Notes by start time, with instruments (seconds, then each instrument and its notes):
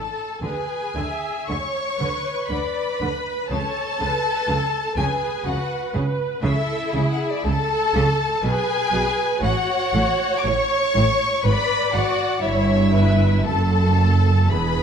Already playing: viola section A4, violin section A4 A5
0.40 double bass section D2, cello section D3, violin section G#4 G#5, viola section B4
0.95 double bass section D2, cello section D3, viola section E5
1.48 double bass section D2, cello section D3, viola section C#5, violin section C#5 C#6
2.00 double bass section D2, cello section D3, viola section B4
2.48 double bass section D2, cello section D3, violin section B4 B5, viola section D5
3.00 double bass section D2, cello section D3, viola section B4
3.49 double bass section C#2, cello section C#3, violin section A4 A5, viola section C#5
3.99 double bass section C#2, cello section C#3, viola section B4
4.48 double bass section C#2, cello section C#3, viola section A4
4.96 double bass section C#2, cello section C#3, violin section G#4 G#5, viola section B4
5.45 double bass section C#2, cello section C#3, violin section F#4 F#5
5.94 double bass section C#2, cello section C#3
6.43 double bass section C#2, cello section C#3, violin section E4 E5, viola section A4
6.93 double bass section C#2, cello section C#3, viola section G#4
7.12 violin section F#5
7.22 violin section E5
7.30 violin section D5
7.39 violin section E5
7.44 double bass section C#2, cello section C#3, viola section A4, violin section A4 A5
7.94 double bass section C#2, cello section C#3
8.43 double bass section B1, cello section B2, violin section G#4 G#5, viola section B4
8.90 double bass section B1, cello section B2
9.41 double bass section A1, cello section A2, violin section F#4 F#5, viola section C#5
9.92 double bass section A1, cello section A2
10.37 violin section D6
10.45 double bass section A1, cello section A2, violin section C#5 C#6
10.95 double bass section A1, cello section A2
11.44 double bass section G#1, cello section G#2, violin section B4 B5, viola section D5
11.93 double bass section G#1, cello section G#2, violin section F#4 F#5
12.42 double bass section G1, cello section G2, violin section E4 E5, viola section C#5
12.96 viola section B4
13.46 double bass section F#1, cello section F#2, violin section A4 A5, viola section A4
14.49 double bass section E1, cello section E2, viola section G#4, violin section B4 B5